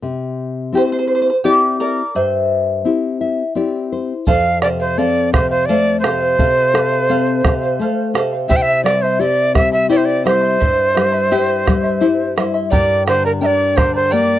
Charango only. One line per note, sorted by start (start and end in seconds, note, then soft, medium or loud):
0.75 0.82 G4 medium
0.75 0.83 C5 medium
0.85 0.91 C5 soft
0.92 0.98 C5 medium
0.99 1.06 C5 soft
1.08 1.14 C5 medium
1.15 1.21 C5 soft
1.22 1.28 C5 medium
1.30 1.36 C5 soft
1.44 1.77 G4 medium
1.44 1.79 D5 medium
1.80 2.13 A#4 medium
1.80 2.17 D5 medium
2.15 3.88 C5 medium
2.15 3.88 E5 medium
4.27 4.61 A4 medium
4.27 4.62 C5 medium
4.27 4.62 F5 medium
4.62 4.80 A4 medium
4.62 4.79 C5 medium
4.62 4.78 F5 medium
4.80 4.97 C5 soft
4.80 4.98 F5 medium
4.98 5.31 A4 medium
4.98 5.32 C5 medium
4.98 5.33 F5 medium
5.33 5.50 A4 soft
5.33 5.50 C5 medium
5.33 5.49 F5 medium
5.51 5.68 C5 soft
5.51 5.68 F5 medium
5.69 6.02 A4 medium
5.69 6.03 C5 medium
5.69 6.04 F5 medium
6.04 6.21 A4 medium
6.04 6.20 C5 medium
6.04 6.19 F5 medium
6.20 6.38 C5 soft
6.20 6.38 F5 soft
6.38 6.74 A4 medium
6.38 6.74 C5 medium
6.38 6.74 F5 medium
6.75 6.92 A4 medium
6.75 6.92 C5 medium
6.75 6.91 F5 medium
6.92 7.08 C5 soft
6.92 7.09 F5 medium
7.09 7.44 A4 medium
7.09 7.44 C5 medium
7.09 7.45 F5 medium
7.45 7.62 A4 medium
7.45 7.61 C5 medium
7.45 7.60 F5 medium
7.62 7.80 C5 medium
7.62 7.79 F5 medium
7.80 8.13 A4 medium
7.80 8.14 C5 medium
7.80 8.15 F5 medium
8.14 8.32 A4 medium
8.14 8.32 C5 medium
8.14 8.32 F5 medium
8.33 8.48 C5 soft
8.33 8.49 F5 medium
8.49 8.85 E4 medium
8.49 8.85 G4 medium
8.49 8.85 C5 medium
8.49 8.85 E5 medium
8.49 8.85 C6 medium
8.86 9.03 E4 medium
8.86 9.03 C5 medium
8.86 9.03 E5 medium
8.86 9.03 C6 medium
9.04 9.20 E4 soft
9.04 9.20 E5 soft
9.04 9.20 C6 medium
9.20 9.54 E4 medium
9.20 9.53 C5 medium
9.20 9.54 E5 medium
9.20 9.54 C6 medium
9.54 9.72 E4 medium
9.54 9.72 C5 medium
9.54 9.72 E5 medium
9.54 9.71 C6 medium
9.72 9.89 E4 soft
9.72 9.89 E5 soft
9.72 9.89 C6 medium
9.89 10.23 E4 medium
9.89 10.25 G4 medium
9.89 10.23 C5 medium
9.89 10.24 E5 medium
9.89 10.25 C6 medium
10.24 10.41 E4 medium
10.24 10.42 C5 medium
10.24 10.41 E5 medium
10.24 10.40 C6 medium
10.41 10.59 E4 soft
10.41 10.59 E5 soft
10.41 10.59 C6 medium
10.59 10.93 E4 medium
10.59 10.93 C5 medium
10.59 10.94 E5 medium
10.59 10.94 C6 medium
10.94 11.12 E4 medium
10.94 11.12 C5 medium
10.94 11.12 E5 medium
10.94 11.11 C6 medium
11.12 11.31 E4 soft
11.12 11.31 E5 medium
11.12 11.30 C6 medium
11.31 11.65 E4 medium
11.31 11.66 G4 medium
11.31 11.64 C5 medium
11.31 11.65 E5 medium
11.31 11.66 C6 loud
11.65 11.83 E4 medium
11.65 11.83 C5 medium
11.65 11.82 E5 medium
11.65 11.82 C6 medium
11.83 12.00 E4 soft
11.83 12.00 E5 medium
11.83 12.01 C6 medium
12.01 12.36 E4 medium
12.01 12.35 C5 medium
12.01 12.36 E5 medium
12.01 12.37 C6 medium
12.36 12.54 E4 medium
12.36 12.54 C5 medium
12.36 12.53 E5 medium
12.36 12.53 C6 medium
12.54 12.71 E4 soft
12.54 12.71 E5 soft
12.54 12.71 C6 medium
12.71 13.06 G4 medium
12.71 13.06 A#4 medium
12.71 13.06 D5 medium
12.71 13.05 G5 medium
12.71 13.06 A#5 medium
13.06 13.23 A#4 medium
13.06 13.23 D5 medium
13.06 13.24 G5 medium
13.06 13.22 A#5 medium
13.23 13.40 A#4 soft
13.23 13.41 D5 soft
13.23 13.41 A#5 medium
13.41 13.75 A#4 medium
13.41 13.75 D5 medium
13.41 13.74 G5 medium
13.41 13.76 A#5 medium
13.76 13.93 A#4 medium
13.76 13.93 D5 medium
13.76 13.93 G5 soft
13.76 13.92 A#5 medium
13.93 14.10 A#4 soft
13.93 14.10 D5 soft
13.93 14.10 A#5 soft
14.11 14.39 G4 medium
14.11 14.39 A#4 medium
14.11 14.39 D5 medium
14.11 14.39 G5 medium
14.11 14.39 A#5 medium